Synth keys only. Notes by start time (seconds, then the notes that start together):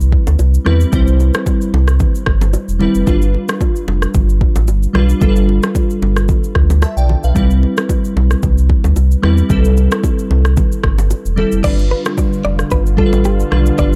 Already playing: G3 C4 E4 B4
0.65 G3 C4 E4 B4
0.92 G3 C4 E4 C5
2.79 G3 C4 E4 B4
3.06 G3 D4 F4 B4
4.93 G3 D4 F4 B4
5.20 G3 D4 F4 A4
5.29 B4
6.82 E5 A5
6.97 D5 G5
7.24 B4 F5
7.35 G3 C4 E4 B4
9.22 G3 C4 E4 B4
9.49 G3 C4 E4 A4
11.36 G3 C4 E4 A4
11.63 G3 D4 F4 B4
12.97 G3 D4 F4 A4
13.06 B4
13.50 G3 D4 F4 B4
13.77 G3 D4 F4 B4